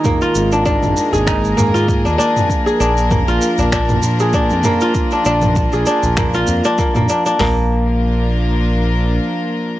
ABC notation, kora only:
X:1
M:4/4
L:1/16
Q:"Swing 16ths" 1/4=98
K:none
V:1 name="Kora"
_B, F z D D z2 _A _E2 B, F z D D z | z _A D2 _B, F z D D z2 A D2 B, F | z D D z2 _A D2 _B, F z D B, B, D D | _B,2 z12 z2 |]